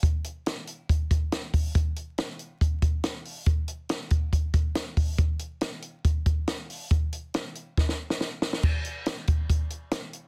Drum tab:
CC |----------------|----------------|----------------|----------------|
HH |x-x-x-x-x-x-x-o-|x-x-x-x-x-x-x-o-|x-x-x-x-x-x-x-o-|x-x-x-x-x-x-x-o-|
SD |----o-------o---|----o-------o---|----o-------o---|----o-------o---|
BD |o-------o-o---o-|o-------o-o-----|o-----o-o-o---o-|o-------o-o-----|

CC |----------------|x---------------|
HH |x-x-x-x---------|--x-x-x-x-x-x-x-|
SD |----o---oo-oo-oo|----o-------o---|
BD |o-------o-------|o-----o-o-------|